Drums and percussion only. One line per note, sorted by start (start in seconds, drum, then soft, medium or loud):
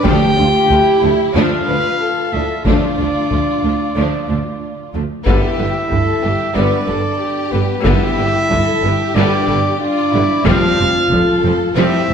0.05 taiko medium
0.70 taiko low medium
2.66 taiko medium
3.31 taiko low medium
5.26 taiko loud
5.91 taiko low medium
7.86 taiko loud
8.51 taiko low medium
10.46 taiko loud
11.12 taiko low medium